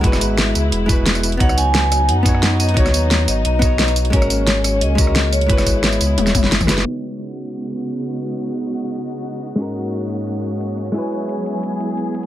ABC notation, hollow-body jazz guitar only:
X:1
M:4/4
L:1/8
Q:1/4=176
K:C#m
V:1 name="Hollow-body jazz guitar"
[G,EFB]4- [G,EFB] [G,EFB]3 | [B,DFc]4- [B,DFc] [B,DFc]3 | [B,DFc]4- [B,DFc] [B,DFc]3 | [G,CF^A]4- [G,CFA] [G,CFA]3 |
[G,EFB]4- [G,EFB] z2 [G,EFB] | [B,DF]8- | [B,DF]8 | [G,CF^A]8 |
[G,EFB]8 |]